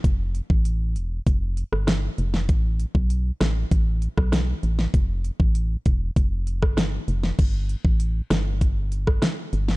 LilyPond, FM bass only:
\new Staff \with { instrumentName = "FM bass" } { \clef bass \time 4/4 \key f \lydian \tempo 4 = 98 f,,8. a,,8. e,,8 f,,8. g,,8. f,,8 | a,,8. b,,8. a,,8 a,,8. b,,8. a,,8 | f,,8. a,,8. e,,8 f,,8. g,,8. f,,8 | g,,8. a,,8. g,,4. r8 g,,8 | }